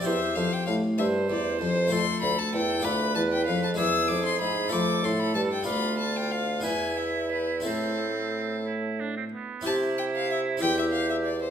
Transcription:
<<
  \new Staff \with { instrumentName = "Violin" } { \time 6/8 \key c \major \tempo 4. = 63 e''8 f''16 g''16 f''8 e''8 d''8 c''8 | \key a \minor c'''8 b''16 a''16 g''8 b''8 a''16 g''16 f''16 a''16 | e'''8 d'''16 c'''16 b''8 d'''8 c'''16 b''16 a''16 g''16 | b''8 a''16 g''16 f''8 gis''8 e''8 b'8 |
a'4. r4. | \key c \major a''8 g''16 f''16 e''8 g''16 e''16 f''16 e''16 d''16 c''16 | }
  \new Staff \with { instrumentName = "Oboe" } { \time 6/8 \key c \major c''4 r8 c''4. | \key a \minor a'4. b'4. | gis'4. a'4. | f'4. e'4. |
c'4. e'8 d'16 c'16 b8 | \key c \major e'4. g'4. | }
  \new Staff \with { instrumentName = "Harpsichord" } { \time 6/8 \key c \major <c' g' c''>2. | \key a \minor <a f' c''>4. <a f' d''>4. | <gis e' d''>4. <a f' c''>4. | <b f' d''>4. <b e' b'>4. |
<c' e' a'>2. | \key c \major <c' e' g'>4. <c' e' g'>4. | }
  \new Staff \with { instrumentName = "Harpsichord" } { \clef bass \time 6/8 \key c \major e,8 f,8 a,8 g,8 e,8 f,8 | \key a \minor f,8 d,8 e,8 d,8 e,8 f,8 | e,8 f,8 gis,8 f,8 a,8 g,8 | d,4. e,4. |
a,2~ a,8 r8 | \key c \major c4. e,4. | }
  \new Staff \with { instrumentName = "Bassoon" } { \clef bass \time 6/8 \key c \major e,8 f,8 a,8 g,8 e,8 f,8 | \key a \minor f,8 d,8 e,8 d,8 e,8 f,8 | e,8 f,8 gis,8 f,8 a,8 g,8 | d,4. e,4. |
a,2~ a,8 r8 | \key c \major c4. e,4. | }
>>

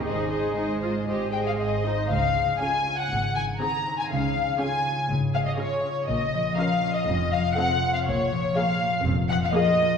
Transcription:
<<
  \new Staff \with { instrumentName = "Violin section" } { \time 4/4 \key aes \major \tempo 4 = 121 aes'2~ aes'8 g''16 f''16 ees''4 | \key des \major f''4 aes''8. ges''8. aes''8 bes''8. aes''16 | f''4 aes''4 r8 f''16 ees''16 des''4 | ees''4 f''8. ees''8. f''8 ges''8. f''16 |
des''4 f''4 r8 ges''16 f''16 ees''4 | }
  \new Staff \with { instrumentName = "Violin section" } { \time 4/4 \key aes \major << { r2 r8 g''16 f''16 ees''4 | \key des \major f''4 aes''8. ges''8. aes''8 bes''8. aes''16 | f''4 aes''4 r8 f''16 ees''16 des''4 | ees''4 f''8. ees''8. f''8 ges''8. f''16 |
des''4 f''4 r8 ges''16 f''16 ees''4 | } \\ { <c'' ees''>8 <c'' ees''>8 <c'' ees''>8 <c'' ees''>8 <c'' ees''>8 <c'' ees''>8 <c'' ees''>8 <c'' ees''>8 | r1 | r1 | r1 |
r1 | } >> }
  \new Staff \with { instrumentName = "Viola section" } { \time 4/4 \key aes \major <ees' aes'>8 <ees' aes'>8 ees'8 f'8 g'8 aes'4 ees'8 | \key des \major r4 <des' aes'>4 r4 <c' aes'>4 | r4 <des' aes'>4 r4 <des' aes'>4 | r4 <des' bes'>4 r4 <c' a'>4 |
r4 <bes aes'>4 r4 <bes aes'>4 | }
  \new Staff \with { instrumentName = "Harp" } { \time 4/4 \key aes \major <aes, c' ees' aes'>1~ | \key des \major <aes, c' ees' aes'>1 | r1 | r1 |
r1 | }
  \new Staff \with { instrumentName = "Harp" } { \time 4/4 \key aes \major r1 | \key des \major des8 aes8 f'8 des'8 aes,8 ees8 ees'8 c'8 | des8 aes8 f'8 des'8 des8 aes8 f'8 des'8 | bes,8 f8 f'8 des'8 f,8 c8 f'8 c'8 |
bes,8 f8 f'8 bes8 bes,8 f8 f'8 bes8 | }
  \new Staff \with { instrumentName = "Cello section" } { \clef bass \time 4/4 \key aes \major aes2. r4 | \key des \major des,4 r4 aes,4 r4 | des4 r4 aes,4 r4 | bes,4 r4 f,4 r4 |
bes,4 r4 f,4 r4 | }
  \new Staff \with { instrumentName = "Double bass section" } { \clef bass \time 4/4 \key aes \major aes,,4 aes,,4 aes,,4 aes,,4 | \key des \major des,4 r4 aes,,4 r4 | des,4 r4 aes,,4 r4 | bes,,4 r4 f,,4 r4 |
bes,,4 r4 f,,4 r4 | }
>>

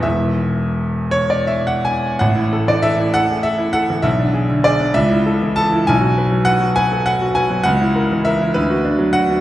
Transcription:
\new Staff \with { instrumentName = "Grand piano" } { \time 6/8 \key a \major \tempo 4. = 66 << { e''4. cis''16 d''16 e''16 fis''16 gis''8 | fis''8. d''16 e''8 fis''8 e''8 fis''8 | e''4 d''8 e''4 a''8 | gis''4 fis''8 gis''8 fis''8 gis''8 |
fis''4 e''8 b'4 fis''8 | } \\ { <e,, e, e b gis'>2. | a,,16 e'16 a'16 e16 a'16 e'16 a'16 gis'16 a'16 e'16 a'16 e16 | b,,16 d'16 gis'16 d16 gis'16 d'16 cis,16 e'16 a'16 e16 a'16 e'16 | b,,16 fis'16 b'16 fis16 b'16 fis'16 b'16 a'16 b'16 fis'16 b'16 fis16 |
cis,16 e'16 ais'16 e16 ais'16 e'16 d,16 fis'16 d'16 fis16 fis'16 d'16 | } >> }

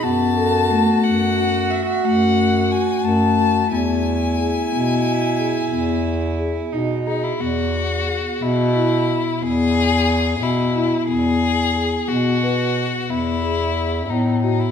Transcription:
<<
  \new Staff \with { instrumentName = "Violin" } { \time 11/8 \key e \major \tempo 4 = 90 a''4. fis''4 e''8 fis''4 gis''8 a''4 | gis''1~ gis''8 r8 dis'16 e'16 | fis'4. e'4. gis'4. e'4 | gis'4. fis'4. e'4. dis'8 dis'16 e'16 | }
  \new Staff \with { instrumentName = "Cello" } { \time 11/8 \key e \major fis'1~ fis'4. | e'1~ e'8 dis'4 | r1 r4. | r1 r4. | }
  \new Staff \with { instrumentName = "Marimba" } { \time 11/8 \key e \major b8 a'8 a4 fis'4 a4 fis'8 a8 fis'8 | b4 gis'8 b4 gis'8 b4 gis'8 dis'8 gis'8 | b4 gis'8 b8 e'4 b8 gis'4 b8 e'8 | b4 gis'8 b8 b'4 b8 gis'4 b8 fis'8 | }
  \new Staff \with { instrumentName = "Bass clarinet" } { \clef bass \time 11/8 \key e \major fis,4. fis,4. fis,4. fis,4 | e,4. b,4. e,4. b,4 | e,4. b,4. e,4. b,4 | e,4. b,4. e,4. a,4 | }
>>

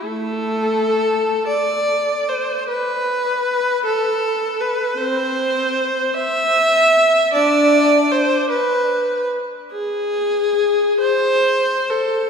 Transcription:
\new Staff \with { instrumentName = "Viola" } { \time 6/8 \key a \dorian \tempo 4. = 50 <a a'>4. d''4 c''8 | b'4. a'4 b'8 | \key c \major <c' c''>4. e''4. | <d' d''>4 c''8 b'4 r8 |
gis'4. c''4 a'8 | }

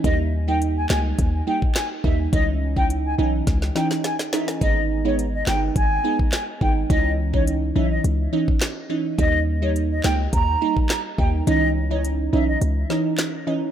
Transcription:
<<
  \new Staff \with { instrumentName = "Flute" } { \time 4/4 \key gis \minor \tempo 4 = 105 dis''16 r8 g''16 r16 gis''16 gis''16 r8. g''16 r16 gis''16 r16 e''16 r16 | dis''16 r8 g''16 r16 gis''16 gis''16 r8. g''16 r16 gis''16 r16 e''16 r16 | dis''8 r16 cis''16 r16 dis''16 g''16 r16 gis''8. r16 gis''16 r16 g''16 r16 | dis''8 r16 cis''16 r8 e''16 dis''16 r2 |
dis''8 r16 cis''16 r16 dis''16 g''16 r16 ais''8. r16 ais''16 r16 g''16 r16 | dis''8 r16 cis''16 r8 e''16 dis''16 r2 | }
  \new Staff \with { instrumentName = "Synth pluck" } { \time 4/4 \key gis \minor <g ais dis'>8. <g ais dis'>8. <g ais dis'>8 r8 <g ais dis'>16 r8. <g ais dis'>16 r16 | <e cis' dis'>8. <e cis' dis'>8. <e cis' dis'>8 r8 <e cis' dis'>16 r8. <e cis' dis'>16 r16 | <gis b dis'>8. <gis b dis'>8. <gis b dis'>8 r8 <gis b dis'>16 r8. <gis b dis'>16 r16 | <e cis' dis'>8. <e cis' dis'>8. <e cis' dis'>8 r8 <e cis' dis'>16 r8. <e cis' dis'>16 r16 |
<g ais dis'>8. <g ais dis'>8. <g ais dis'>8 r8 <g ais dis'>16 r8. <g ais dis'>16 r16 | <e cis' dis'>8. <e cis' dis'>8. <e cis' dis'>8 r8 <e cis' dis'>16 r8. <e cis' dis'>16 r16 | }
  \new Staff \with { instrumentName = "808-style bass" } { \clef bass \time 4/4 \key gis \minor dis,4. cis,8 dis,8 r4 dis,8 | cis,4. b,,8 cis,8 r4. | gis,,4. g,,8 gis,,8 r4 gis,,8 | cis,4. b,,8 cis,8 r4. |
dis,4. cis,8 dis,8 r4 dis,8 | cis,4. b,,8 cis,8 r4. | }
  \new DrumStaff \with { instrumentName = "Drums" } \drummode { \time 4/4 <hh bd>4 hh8 <hc sn>8 <hh bd>8. bd16 <hc hh sn>8 bd8 | <hh bd>8. bd16 hh4 <hh bd sn>16 sn16 sn16 sn16 <hh sn>16 sn16 sn16 sn16 | <hh bd>4 hh8 <hc sn>8 <hh bd>8. bd16 <hc hh sn>8 bd8 | <hh bd>8. bd16 hh4 hh8. bd16 <hc hh sn>4 |
<hh bd>4 hh8 <hc sn>8 <hh bd>8. bd16 <hc hh sn>8 bd8 | hh4 hh4 hh8 sn8 <hc hh sn>4 | }
>>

